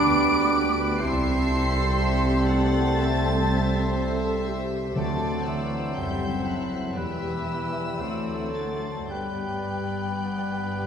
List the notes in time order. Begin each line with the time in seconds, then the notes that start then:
Already playing: G3 D4 B4 D6 D7
0.02 D2 B3 F#4 B4 D5
0.52 B3
0.99 C2 G3 C4 E4 A4 C5 E5 C6 C7
1.49 E4
1.96 G4 E5
2.46 A3 F#5 A5 A6
2.95 A4 C5 E5
3.46 E5
3.95 A4 E5
4.45 G4
4.94 D2 D3 F#3 A3 C4 F#4 A4 C5 D5 A5 A6
5.45 E3 E5 E6
5.95 F#1 F#2 G3 E4 A4 E5 G5 G6
6.46 F#3 F#5 F#6
6.95 E1 E2 E3 G3 B3 G4 B4 E5 E6
7.48 B4
8.00 D2 F#3 C4 F#4 A4 C5 D5
8.53 A3 D4 A5 A6
9.10 G1 G2 G3 B3 G4 B4 D5 G5 G6
10.25 B3